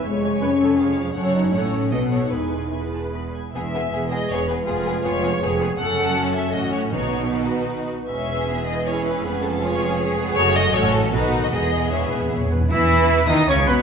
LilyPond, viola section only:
\new Staff \with { instrumentName = "Viola section" } { \time 3/4 \key e \major \tempo 4 = 158 cis''8 cis''8 b'8 a'8 gis'4 | a'4 a'4 a'4 | gis'4 gis'4. r8 | r4 gis'2 |
eis'4 eis'4 gis'4 | a'4 cis'2 | dis'2~ dis'8 r8 | cis'4 b4 e'4 |
cis'4 eis'4 gis'4~ | gis'4 a'4 fis'4 | gis'4 cis''8 b'8 cis''8 b'8 | b'2 cis''4 | }